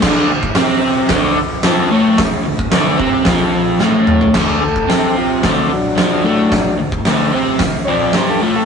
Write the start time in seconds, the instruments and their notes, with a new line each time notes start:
0.02 overdriven electric guitar D2 D3, kick, snare, crash
0.29 overdriven electric guitar D2
0.43 kick
0.55 overdriven electric guitar C3 C4, snare, open hi-hat
1.09 overdriven electric guitar D2 D3, kick, snare, open hi-hat
1.37 muted overdriven electric guitar stroke
1.63 overdriven electric guitar F2 F3, snare, open hi-hat
1.91 overdriven electric guitar A2 A3
2.18 muted overdriven electric guitar stroke, kick, snare, open hi-hat
2.45 overdriven electric guitar D2
2.59 kick
2.71 overdriven electric guitar D2 D3, snare, open hi-hat
2.98 overdriven electric guitar C3 C4, kick
3.25 overdriven electric guitar F2 F3, kick, snare, open hi-hat
3.80 overdriven electric guitar A2 A3, snare
4.07 mid tom
4.21 floor tom
4.34 overdriven electric guitar D2 D3, kick, snare, crash
4.60 overdriven electric guitar D2, transistor combo organ G#4
4.65 transistor combo organ A4
4.76 kick
4.88 overdriven electric guitar C3 C4, snare, open hi-hat
5.18 transistor combo organ F4
5.43 overdriven electric guitar D2 D3, kick, snare, open hi-hat
5.47 transistor combo organ C4
5.70 transistor combo organ F#3 D4, muted overdriven electric guitar stroke
5.96 overdriven electric guitar F2 F3, snare, open hi-hat
6.24 overdriven electric guitar A2 A3
6.52 muted overdriven electric guitar stroke, kick, snare, open hi-hat
6.79 overdriven electric guitar D2
6.92 kick
7.05 overdriven electric guitar D2 D3, snare, open hi-hat
7.33 overdriven electric guitar C3 C4
7.59 overdriven electric guitar D2, kick, snare, open hi-hat
7.85 overdriven electric guitar F2 F3, transistor combo organ C#5 D5
8.13 overdriven electric guitar G2 G3, transistor combo organ C5, snare, open hi-hat
8.30 transistor combo organ A4
8.41 overdriven electric guitar A2 A3, transistor combo organ F4
8.56 transistor combo organ A4